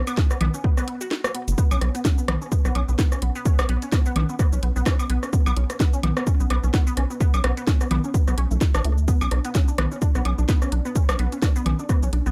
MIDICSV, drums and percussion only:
0, 0, Header, 1, 2, 480
1, 0, Start_track
1, 0, Key_signature, 2, "minor"
1, 0, Tempo, 468750
1, 1618, Time_signature, 4, 2, 24, 8
1, 12611, End_track
2, 0, Start_track
2, 0, Title_t, "Drums"
2, 73, Note_on_c, 9, 42, 36
2, 73, Note_on_c, 9, 69, 57
2, 75, Note_on_c, 9, 77, 70
2, 176, Note_off_c, 9, 42, 0
2, 176, Note_off_c, 9, 69, 0
2, 176, Note_on_c, 9, 38, 93
2, 177, Note_off_c, 9, 77, 0
2, 177, Note_on_c, 9, 36, 121
2, 279, Note_off_c, 9, 38, 0
2, 280, Note_off_c, 9, 36, 0
2, 312, Note_on_c, 9, 69, 44
2, 314, Note_on_c, 9, 37, 44
2, 415, Note_off_c, 9, 69, 0
2, 416, Note_on_c, 9, 42, 91
2, 417, Note_off_c, 9, 37, 0
2, 417, Note_on_c, 9, 47, 97
2, 417, Note_on_c, 9, 77, 55
2, 519, Note_off_c, 9, 42, 0
2, 520, Note_off_c, 9, 47, 0
2, 520, Note_off_c, 9, 77, 0
2, 553, Note_on_c, 9, 69, 56
2, 655, Note_off_c, 9, 69, 0
2, 657, Note_on_c, 9, 36, 122
2, 760, Note_off_c, 9, 36, 0
2, 793, Note_on_c, 9, 37, 41
2, 793, Note_on_c, 9, 69, 45
2, 895, Note_off_c, 9, 37, 0
2, 895, Note_off_c, 9, 69, 0
2, 898, Note_on_c, 9, 42, 91
2, 1000, Note_off_c, 9, 42, 0
2, 1034, Note_on_c, 9, 69, 56
2, 1137, Note_off_c, 9, 69, 0
2, 1138, Note_on_c, 9, 38, 95
2, 1240, Note_off_c, 9, 38, 0
2, 1274, Note_on_c, 9, 37, 85
2, 1275, Note_on_c, 9, 69, 32
2, 1376, Note_off_c, 9, 37, 0
2, 1377, Note_off_c, 9, 69, 0
2, 1378, Note_on_c, 9, 42, 92
2, 1481, Note_off_c, 9, 42, 0
2, 1514, Note_on_c, 9, 42, 36
2, 1514, Note_on_c, 9, 69, 56
2, 1617, Note_off_c, 9, 42, 0
2, 1617, Note_off_c, 9, 69, 0
2, 1617, Note_on_c, 9, 36, 116
2, 1618, Note_on_c, 9, 69, 69
2, 1720, Note_off_c, 9, 36, 0
2, 1721, Note_off_c, 9, 69, 0
2, 1754, Note_on_c, 9, 69, 45
2, 1754, Note_on_c, 9, 77, 82
2, 1856, Note_off_c, 9, 69, 0
2, 1856, Note_off_c, 9, 77, 0
2, 1858, Note_on_c, 9, 37, 41
2, 1858, Note_on_c, 9, 42, 94
2, 1960, Note_off_c, 9, 37, 0
2, 1960, Note_off_c, 9, 42, 0
2, 1995, Note_on_c, 9, 42, 38
2, 1995, Note_on_c, 9, 69, 32
2, 2097, Note_off_c, 9, 42, 0
2, 2097, Note_off_c, 9, 69, 0
2, 2097, Note_on_c, 9, 36, 119
2, 2098, Note_on_c, 9, 38, 94
2, 2098, Note_on_c, 9, 69, 68
2, 2200, Note_off_c, 9, 36, 0
2, 2200, Note_off_c, 9, 38, 0
2, 2200, Note_off_c, 9, 69, 0
2, 2235, Note_on_c, 9, 69, 45
2, 2337, Note_off_c, 9, 69, 0
2, 2338, Note_on_c, 9, 37, 84
2, 2338, Note_on_c, 9, 42, 94
2, 2338, Note_on_c, 9, 47, 99
2, 2338, Note_on_c, 9, 77, 57
2, 2440, Note_off_c, 9, 37, 0
2, 2440, Note_off_c, 9, 42, 0
2, 2440, Note_off_c, 9, 47, 0
2, 2440, Note_off_c, 9, 77, 0
2, 2474, Note_on_c, 9, 69, 30
2, 2577, Note_off_c, 9, 69, 0
2, 2578, Note_on_c, 9, 36, 126
2, 2578, Note_on_c, 9, 69, 67
2, 2680, Note_off_c, 9, 36, 0
2, 2681, Note_off_c, 9, 69, 0
2, 2714, Note_on_c, 9, 37, 41
2, 2714, Note_on_c, 9, 69, 44
2, 2817, Note_off_c, 9, 37, 0
2, 2817, Note_off_c, 9, 69, 0
2, 2818, Note_on_c, 9, 42, 97
2, 2818, Note_on_c, 9, 77, 56
2, 2920, Note_off_c, 9, 42, 0
2, 2920, Note_off_c, 9, 77, 0
2, 2955, Note_on_c, 9, 69, 31
2, 3057, Note_off_c, 9, 69, 0
2, 3058, Note_on_c, 9, 36, 122
2, 3058, Note_on_c, 9, 38, 97
2, 3058, Note_on_c, 9, 69, 67
2, 3160, Note_off_c, 9, 36, 0
2, 3161, Note_off_c, 9, 38, 0
2, 3161, Note_off_c, 9, 69, 0
2, 3195, Note_on_c, 9, 37, 43
2, 3195, Note_on_c, 9, 69, 45
2, 3297, Note_off_c, 9, 69, 0
2, 3297, Note_on_c, 9, 42, 94
2, 3298, Note_off_c, 9, 37, 0
2, 3399, Note_off_c, 9, 42, 0
2, 3434, Note_on_c, 9, 69, 31
2, 3537, Note_off_c, 9, 69, 0
2, 3537, Note_on_c, 9, 69, 65
2, 3538, Note_on_c, 9, 36, 126
2, 3639, Note_off_c, 9, 69, 0
2, 3640, Note_off_c, 9, 36, 0
2, 3674, Note_on_c, 9, 69, 45
2, 3676, Note_on_c, 9, 37, 84
2, 3676, Note_on_c, 9, 77, 87
2, 3776, Note_off_c, 9, 69, 0
2, 3777, Note_on_c, 9, 42, 97
2, 3778, Note_off_c, 9, 37, 0
2, 3778, Note_off_c, 9, 77, 0
2, 3879, Note_off_c, 9, 42, 0
2, 3914, Note_on_c, 9, 42, 39
2, 3914, Note_on_c, 9, 69, 31
2, 4016, Note_off_c, 9, 42, 0
2, 4016, Note_off_c, 9, 69, 0
2, 4017, Note_on_c, 9, 38, 97
2, 4017, Note_on_c, 9, 69, 63
2, 4018, Note_on_c, 9, 36, 126
2, 4020, Note_on_c, 9, 37, 41
2, 4120, Note_off_c, 9, 36, 0
2, 4120, Note_off_c, 9, 38, 0
2, 4120, Note_off_c, 9, 69, 0
2, 4122, Note_off_c, 9, 37, 0
2, 4154, Note_on_c, 9, 69, 43
2, 4256, Note_off_c, 9, 69, 0
2, 4257, Note_on_c, 9, 42, 100
2, 4260, Note_on_c, 9, 47, 102
2, 4260, Note_on_c, 9, 77, 61
2, 4360, Note_off_c, 9, 42, 0
2, 4362, Note_off_c, 9, 47, 0
2, 4362, Note_off_c, 9, 77, 0
2, 4395, Note_on_c, 9, 69, 30
2, 4497, Note_off_c, 9, 69, 0
2, 4498, Note_on_c, 9, 36, 124
2, 4498, Note_on_c, 9, 69, 66
2, 4499, Note_on_c, 9, 37, 39
2, 4601, Note_off_c, 9, 36, 0
2, 4601, Note_off_c, 9, 37, 0
2, 4601, Note_off_c, 9, 69, 0
2, 4635, Note_on_c, 9, 69, 43
2, 4737, Note_off_c, 9, 69, 0
2, 4739, Note_on_c, 9, 42, 96
2, 4841, Note_off_c, 9, 42, 0
2, 4875, Note_on_c, 9, 69, 30
2, 4977, Note_off_c, 9, 69, 0
2, 4978, Note_on_c, 9, 37, 80
2, 4978, Note_on_c, 9, 38, 96
2, 4978, Note_on_c, 9, 69, 64
2, 4979, Note_on_c, 9, 36, 127
2, 5080, Note_off_c, 9, 37, 0
2, 5080, Note_off_c, 9, 38, 0
2, 5080, Note_off_c, 9, 69, 0
2, 5081, Note_off_c, 9, 36, 0
2, 5114, Note_on_c, 9, 77, 56
2, 5115, Note_on_c, 9, 69, 45
2, 5216, Note_off_c, 9, 77, 0
2, 5217, Note_off_c, 9, 69, 0
2, 5219, Note_on_c, 9, 42, 98
2, 5321, Note_off_c, 9, 42, 0
2, 5354, Note_on_c, 9, 37, 42
2, 5355, Note_on_c, 9, 69, 31
2, 5457, Note_off_c, 9, 37, 0
2, 5458, Note_off_c, 9, 69, 0
2, 5458, Note_on_c, 9, 69, 65
2, 5459, Note_on_c, 9, 36, 123
2, 5561, Note_off_c, 9, 36, 0
2, 5561, Note_off_c, 9, 69, 0
2, 5594, Note_on_c, 9, 77, 88
2, 5595, Note_on_c, 9, 69, 42
2, 5697, Note_off_c, 9, 69, 0
2, 5697, Note_off_c, 9, 77, 0
2, 5699, Note_on_c, 9, 42, 95
2, 5801, Note_off_c, 9, 42, 0
2, 5835, Note_on_c, 9, 37, 38
2, 5835, Note_on_c, 9, 42, 39
2, 5835, Note_on_c, 9, 69, 29
2, 5937, Note_off_c, 9, 37, 0
2, 5938, Note_off_c, 9, 42, 0
2, 5938, Note_off_c, 9, 69, 0
2, 5939, Note_on_c, 9, 36, 125
2, 5940, Note_on_c, 9, 38, 97
2, 5940, Note_on_c, 9, 69, 63
2, 6041, Note_off_c, 9, 36, 0
2, 6042, Note_off_c, 9, 38, 0
2, 6042, Note_off_c, 9, 69, 0
2, 6076, Note_on_c, 9, 69, 41
2, 6178, Note_off_c, 9, 69, 0
2, 6179, Note_on_c, 9, 42, 100
2, 6179, Note_on_c, 9, 47, 96
2, 6179, Note_on_c, 9, 77, 60
2, 6281, Note_off_c, 9, 42, 0
2, 6281, Note_off_c, 9, 47, 0
2, 6281, Note_off_c, 9, 77, 0
2, 6315, Note_on_c, 9, 37, 78
2, 6315, Note_on_c, 9, 69, 29
2, 6418, Note_off_c, 9, 37, 0
2, 6418, Note_off_c, 9, 69, 0
2, 6418, Note_on_c, 9, 69, 64
2, 6419, Note_on_c, 9, 36, 127
2, 6521, Note_off_c, 9, 36, 0
2, 6521, Note_off_c, 9, 69, 0
2, 6555, Note_on_c, 9, 69, 40
2, 6657, Note_off_c, 9, 69, 0
2, 6659, Note_on_c, 9, 42, 100
2, 6660, Note_on_c, 9, 37, 39
2, 6660, Note_on_c, 9, 77, 62
2, 6761, Note_off_c, 9, 42, 0
2, 6763, Note_off_c, 9, 37, 0
2, 6763, Note_off_c, 9, 77, 0
2, 6794, Note_on_c, 9, 69, 29
2, 6897, Note_off_c, 9, 69, 0
2, 6898, Note_on_c, 9, 36, 127
2, 6898, Note_on_c, 9, 38, 95
2, 6898, Note_on_c, 9, 69, 62
2, 7001, Note_off_c, 9, 36, 0
2, 7001, Note_off_c, 9, 38, 0
2, 7001, Note_off_c, 9, 69, 0
2, 7035, Note_on_c, 9, 69, 42
2, 7137, Note_off_c, 9, 69, 0
2, 7138, Note_on_c, 9, 42, 104
2, 7140, Note_on_c, 9, 37, 38
2, 7240, Note_off_c, 9, 42, 0
2, 7243, Note_off_c, 9, 37, 0
2, 7275, Note_on_c, 9, 69, 29
2, 7377, Note_off_c, 9, 69, 0
2, 7378, Note_on_c, 9, 36, 124
2, 7378, Note_on_c, 9, 69, 60
2, 7481, Note_off_c, 9, 36, 0
2, 7481, Note_off_c, 9, 69, 0
2, 7515, Note_on_c, 9, 69, 42
2, 7515, Note_on_c, 9, 77, 85
2, 7617, Note_off_c, 9, 69, 0
2, 7618, Note_off_c, 9, 77, 0
2, 7618, Note_on_c, 9, 42, 97
2, 7619, Note_on_c, 9, 37, 79
2, 7720, Note_off_c, 9, 42, 0
2, 7722, Note_off_c, 9, 37, 0
2, 7755, Note_on_c, 9, 42, 40
2, 7755, Note_on_c, 9, 69, 29
2, 7857, Note_off_c, 9, 42, 0
2, 7857, Note_off_c, 9, 69, 0
2, 7858, Note_on_c, 9, 36, 127
2, 7858, Note_on_c, 9, 38, 93
2, 7858, Note_on_c, 9, 69, 63
2, 7960, Note_off_c, 9, 36, 0
2, 7961, Note_off_c, 9, 38, 0
2, 7961, Note_off_c, 9, 69, 0
2, 7994, Note_on_c, 9, 69, 40
2, 7996, Note_on_c, 9, 37, 38
2, 8097, Note_off_c, 9, 69, 0
2, 8098, Note_on_c, 9, 42, 100
2, 8099, Note_off_c, 9, 37, 0
2, 8099, Note_on_c, 9, 47, 91
2, 8099, Note_on_c, 9, 77, 58
2, 8200, Note_off_c, 9, 42, 0
2, 8201, Note_off_c, 9, 47, 0
2, 8201, Note_off_c, 9, 77, 0
2, 8234, Note_on_c, 9, 69, 29
2, 8337, Note_off_c, 9, 69, 0
2, 8338, Note_on_c, 9, 36, 127
2, 8339, Note_on_c, 9, 69, 62
2, 8440, Note_off_c, 9, 36, 0
2, 8441, Note_off_c, 9, 69, 0
2, 8475, Note_on_c, 9, 37, 38
2, 8475, Note_on_c, 9, 69, 41
2, 8578, Note_off_c, 9, 37, 0
2, 8578, Note_off_c, 9, 69, 0
2, 8578, Note_on_c, 9, 42, 100
2, 8680, Note_off_c, 9, 42, 0
2, 8714, Note_on_c, 9, 69, 28
2, 8817, Note_off_c, 9, 69, 0
2, 8817, Note_on_c, 9, 38, 89
2, 8817, Note_on_c, 9, 69, 60
2, 8818, Note_on_c, 9, 36, 127
2, 8920, Note_off_c, 9, 36, 0
2, 8920, Note_off_c, 9, 38, 0
2, 8920, Note_off_c, 9, 69, 0
2, 8953, Note_on_c, 9, 69, 41
2, 8955, Note_on_c, 9, 37, 78
2, 8955, Note_on_c, 9, 77, 57
2, 9056, Note_off_c, 9, 69, 0
2, 9057, Note_on_c, 9, 42, 99
2, 9058, Note_off_c, 9, 37, 0
2, 9058, Note_off_c, 9, 77, 0
2, 9160, Note_off_c, 9, 42, 0
2, 9193, Note_on_c, 9, 69, 27
2, 9296, Note_off_c, 9, 69, 0
2, 9297, Note_on_c, 9, 69, 63
2, 9298, Note_on_c, 9, 36, 118
2, 9399, Note_off_c, 9, 69, 0
2, 9400, Note_off_c, 9, 36, 0
2, 9433, Note_on_c, 9, 69, 42
2, 9434, Note_on_c, 9, 77, 84
2, 9535, Note_off_c, 9, 69, 0
2, 9536, Note_on_c, 9, 42, 92
2, 9537, Note_off_c, 9, 77, 0
2, 9538, Note_on_c, 9, 37, 39
2, 9639, Note_off_c, 9, 42, 0
2, 9641, Note_off_c, 9, 37, 0
2, 9672, Note_on_c, 9, 42, 38
2, 9672, Note_on_c, 9, 69, 29
2, 9775, Note_off_c, 9, 42, 0
2, 9775, Note_off_c, 9, 69, 0
2, 9777, Note_on_c, 9, 38, 89
2, 9777, Note_on_c, 9, 69, 62
2, 9778, Note_on_c, 9, 36, 125
2, 9879, Note_off_c, 9, 38, 0
2, 9879, Note_off_c, 9, 69, 0
2, 9880, Note_off_c, 9, 36, 0
2, 9913, Note_on_c, 9, 69, 40
2, 10015, Note_off_c, 9, 69, 0
2, 10017, Note_on_c, 9, 42, 96
2, 10019, Note_on_c, 9, 37, 77
2, 10019, Note_on_c, 9, 47, 89
2, 10019, Note_on_c, 9, 77, 58
2, 10120, Note_off_c, 9, 42, 0
2, 10121, Note_off_c, 9, 37, 0
2, 10121, Note_off_c, 9, 47, 0
2, 10121, Note_off_c, 9, 77, 0
2, 10154, Note_on_c, 9, 69, 29
2, 10256, Note_off_c, 9, 69, 0
2, 10257, Note_on_c, 9, 69, 61
2, 10258, Note_on_c, 9, 36, 122
2, 10359, Note_off_c, 9, 69, 0
2, 10360, Note_off_c, 9, 36, 0
2, 10394, Note_on_c, 9, 69, 41
2, 10396, Note_on_c, 9, 37, 38
2, 10496, Note_off_c, 9, 69, 0
2, 10498, Note_off_c, 9, 37, 0
2, 10498, Note_on_c, 9, 42, 96
2, 10499, Note_on_c, 9, 77, 57
2, 10600, Note_off_c, 9, 42, 0
2, 10601, Note_off_c, 9, 77, 0
2, 10634, Note_on_c, 9, 69, 29
2, 10737, Note_off_c, 9, 69, 0
2, 10738, Note_on_c, 9, 36, 126
2, 10738, Note_on_c, 9, 38, 90
2, 10738, Note_on_c, 9, 69, 61
2, 10840, Note_off_c, 9, 36, 0
2, 10840, Note_off_c, 9, 38, 0
2, 10840, Note_off_c, 9, 69, 0
2, 10874, Note_on_c, 9, 69, 42
2, 10875, Note_on_c, 9, 37, 40
2, 10977, Note_off_c, 9, 37, 0
2, 10977, Note_off_c, 9, 69, 0
2, 10978, Note_on_c, 9, 42, 99
2, 11080, Note_off_c, 9, 42, 0
2, 11114, Note_on_c, 9, 69, 29
2, 11216, Note_off_c, 9, 69, 0
2, 11218, Note_on_c, 9, 36, 114
2, 11218, Note_on_c, 9, 69, 65
2, 11320, Note_off_c, 9, 69, 0
2, 11321, Note_off_c, 9, 36, 0
2, 11354, Note_on_c, 9, 69, 43
2, 11355, Note_on_c, 9, 37, 83
2, 11355, Note_on_c, 9, 77, 78
2, 11457, Note_off_c, 9, 69, 0
2, 11458, Note_off_c, 9, 37, 0
2, 11458, Note_off_c, 9, 77, 0
2, 11459, Note_on_c, 9, 42, 92
2, 11561, Note_off_c, 9, 42, 0
2, 11595, Note_on_c, 9, 42, 36
2, 11595, Note_on_c, 9, 69, 30
2, 11697, Note_off_c, 9, 42, 0
2, 11697, Note_off_c, 9, 69, 0
2, 11698, Note_on_c, 9, 36, 120
2, 11698, Note_on_c, 9, 38, 91
2, 11698, Note_on_c, 9, 69, 64
2, 11699, Note_on_c, 9, 37, 40
2, 11801, Note_off_c, 9, 36, 0
2, 11801, Note_off_c, 9, 37, 0
2, 11801, Note_off_c, 9, 38, 0
2, 11801, Note_off_c, 9, 69, 0
2, 11835, Note_on_c, 9, 69, 43
2, 11937, Note_off_c, 9, 69, 0
2, 11939, Note_on_c, 9, 42, 93
2, 11939, Note_on_c, 9, 47, 90
2, 11939, Note_on_c, 9, 77, 55
2, 12041, Note_off_c, 9, 42, 0
2, 12041, Note_off_c, 9, 47, 0
2, 12041, Note_off_c, 9, 77, 0
2, 12074, Note_on_c, 9, 69, 30
2, 12177, Note_off_c, 9, 69, 0
2, 12178, Note_on_c, 9, 36, 121
2, 12178, Note_on_c, 9, 37, 39
2, 12178, Note_on_c, 9, 69, 62
2, 12281, Note_off_c, 9, 36, 0
2, 12281, Note_off_c, 9, 37, 0
2, 12281, Note_off_c, 9, 69, 0
2, 12315, Note_on_c, 9, 69, 42
2, 12418, Note_off_c, 9, 69, 0
2, 12419, Note_on_c, 9, 42, 92
2, 12522, Note_off_c, 9, 42, 0
2, 12556, Note_on_c, 9, 69, 30
2, 12611, Note_off_c, 9, 69, 0
2, 12611, End_track
0, 0, End_of_file